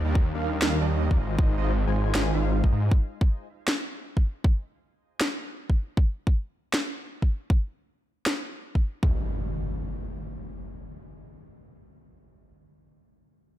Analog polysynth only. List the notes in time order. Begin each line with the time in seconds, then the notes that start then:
0.04 G3 D4 D#4 A#4 D5
0.34 G3 D4 D#4 A#4 F5
0.62 G3 D4 D#4 A#4 F5
0.81 G3 D4 D#4 A#4 D#5
1.11 G3 D4 D#4 A#4 D5
1.19 G#3 D#4 F4 C5 D#5
1.39 G#3 D#4 F4 C5 D#5
1.58 G#3 D#4 F4 C5 D#5
1.87 G#3 D#4 F4 C5 G#5
2.15 G#3 D#4 F4 C5 G#5
2.34 G#3 D#4 F4 C5 F5
2.64 G#3 D#4 F4 C5 D#5
2.72 G#3 D#4 F4 C5 D#5